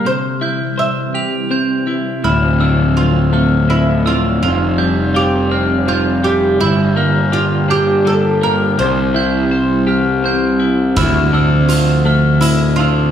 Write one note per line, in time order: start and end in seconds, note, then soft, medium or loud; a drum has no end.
0.00 2.20 G4 medium
0.00 0.42 F6 soft
0.05 1.87 C3 soft
0.05 2.22 C3 medium
0.05 2.22 E3 medium
0.05 2.22 G3 medium
0.05 4.38 C4 medium
0.05 0.79 C5 medium
0.41 1.86 E4 soft
0.41 1.15 G6 medium
0.78 2.24 C5 soft
0.78 1.47 E5 medium
1.14 2.24 G4 soft
1.14 1.51 F7 soft
1.51 2.24 C4 soft
1.51 2.24 G6 soft
1.87 2.24 E4 soft
2.24 4.39 D1 soft
2.24 4.06 D2 soft
2.24 4.41 D3 medium
2.24 6.57 F3 medium
2.24 4.41 A3 medium
2.24 6.57 D4 medium
2.24 2.96 E4 medium
2.24 2.60 F6 medium
2.60 4.04 D3 soft
2.60 3.33 E6 soft
2.97 3.66 F4 soft
3.33 4.42 A3 soft
3.33 4.06 F6 soft
3.69 4.42 A2 soft
3.69 4.07 E4 soft
4.06 4.42 D3 soft
4.06 4.41 F4 medium
4.06 4.79 E6 medium
4.42 6.57 F1 medium
4.42 6.24 F2 soft
4.42 6.59 C3 medium
4.42 10.94 G3 medium
4.42 5.11 F4 medium
4.42 6.58 G4 medium
4.78 6.23 G3 soft
4.78 5.51 G6 medium
5.14 6.60 F4 medium
5.14 5.88 G4 medium
5.51 6.61 C4 soft
5.51 5.88 F6 soft
5.88 6.61 F3 soft
5.88 6.24 F4 soft
5.88 6.60 G6 medium
6.24 6.96 G3 soft
6.24 6.60 G4 medium
6.60 8.75 G1 medium
6.60 8.42 G2 soft
6.60 8.78 A#2 medium
6.60 8.78 D3 medium
6.60 8.78 D4 medium
6.60 7.33 E4 medium
6.60 10.94 G4 medium
6.60 6.97 G6 medium
6.96 8.40 A#3 soft
6.96 7.70 F6 medium
7.32 7.70 F4 medium
7.32 8.79 G4 soft
7.69 8.78 D4 soft
7.69 8.07 G4 medium
7.69 8.43 G6 soft
8.05 8.79 G3 soft
8.05 8.43 A4 medium
8.41 8.79 A#3 soft
8.41 8.78 A#4 medium
8.41 9.16 F6 medium
8.78 10.94 C2 medium
8.78 10.60 C3 soft
8.78 10.97 C3 medium
8.78 10.96 E3 medium
8.78 13.11 C4 medium
8.78 10.57 C5 medium
9.14 10.58 E4 soft
9.14 9.89 G6 medium
9.51 10.97 C5 medium
9.87 10.97 G4 soft
9.87 10.25 F6 soft
10.24 10.97 C4 soft
10.24 10.98 G6 soft
10.60 10.97 E4 soft
10.96 12.79 D2 soft
10.96 13.11 D2 medium
10.96 13.11 D3 medium
10.96 13.11 F3 medium
10.96 13.11 A3 medium
10.96 11.68 E4 medium
10.96 11.34 F6 medium
10.96 kick medium
10.96 closed hi-hat soft
11.33 12.78 D3 soft
11.33 12.07 E6 medium
11.69 12.40 F4 medium
11.69 closed hi-hat soft
12.05 13.11 A3 soft
12.05 12.79 F6 soft
12.41 13.11 A2 soft
12.41 12.76 E4 medium
12.41 closed hi-hat soft
12.76 13.11 D3 soft
12.76 13.11 F4 medium
12.80 13.11 E6 soft